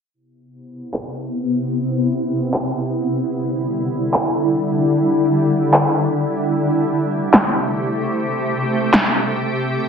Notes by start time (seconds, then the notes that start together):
0.14 C3 B3 E4
0.94 clap
2.54 clap
3.14 D3 G3
4.14 clap
5.74 clap
6.54 C3 A3 G4
7.34 snare, clap
8.94 snare, clap
9.74 D3 C4 F#4